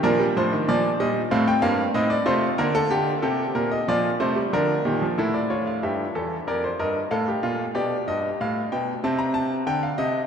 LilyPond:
<<
  \new Staff \with { instrumentName = "Grand piano" } { \time 4/4 \key bes \mixolydian \tempo 4 = 94 << { bes'8 c''8 d''8 ees''8 f''16 g''16 f''8 ees''16 d''16 c''8 | bes'16 a'16 g'8 a'8 bes'16 ees''16 d''8 c''8 bes'4 | a'16 d''16 cis''16 f''16 e''4 d''8 ees''8 f''4 | d''8 ees''8 f''8 g''8 a''16 bes''16 a''8 g''16 f''16 ees''8 | } \\ { d'2 c'4 ees'8 f'8~ | f'4 g'4 f'4 d'8 g'8 | e'8 f'8 g'8 a'8 bes'16 c''16 bes'8 a'16 g'16 f'8 | g'2 c'2 | } >> }
  \new Staff \with { instrumentName = "Grand piano" } { \clef bass \time 4/4 \key bes \mixolydian << { f16 g16 f16 ees16 f8 g8 a8 bes8 c'8 a8 | bes2 f8 a16 g16 f8 ees16 f16 | r1 | r1 | } \\ { bes,8 a,8 bes,8 bes,8 a,8 g,8 a,8 c8 | d8 d8 c8 bes,8 bes,8 c8 d8 bes,8 | a,4 g,8 e,8 f,8 g,8 a,8 bes,8 | b,8 g,8 a,8 b,8 c4 d8 c8 | } >> }
>>